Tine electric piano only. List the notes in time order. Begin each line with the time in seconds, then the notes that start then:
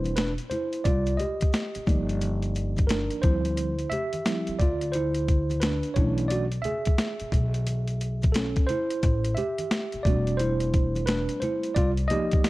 Already playing: G3 C4 D4 E4 B4 C5
0.16 D4 B4
0.50 E4 C5
0.84 F4 D5
1.17 G4 D#5
1.87 F3 A#3 D#4 D5
2.87 D4 A#4
3.22 F3 G3 C4 E4 C5
3.90 G4 E5
4.26 F3 G3 C4 E4
4.59 F4 D5
4.92 E4 C5
5.60 D4 B4
5.94 E3 A3 C#4 D4 E4 C#5
6.28 F#4 D5
6.62 G#4 E5
8.32 C#4 A4
8.66 E4 C5
9.35 G4 E5
10.03 G3 A3 C4 D4 F#4 D5
10.37 E4 C5
11.06 D4 B4
11.40 E4 C5
11.74 F4 D5
12.08 F3 A#3 D#4 G4 D5 D#5